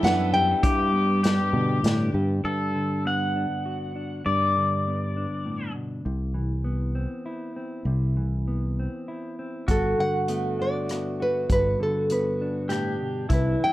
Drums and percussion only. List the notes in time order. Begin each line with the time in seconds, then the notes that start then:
0.04 snare, closed hi-hat
0.64 kick, closed hi-hat
1.24 snare, closed hi-hat
1.84 snare, closed hi-hat
9.68 kick, closed hi-hat
10.29 closed hi-hat
10.89 cross-stick, closed hi-hat
11.50 kick, closed hi-hat
12.10 closed hi-hat
12.70 cross-stick, closed hi-hat
13.30 kick, closed hi-hat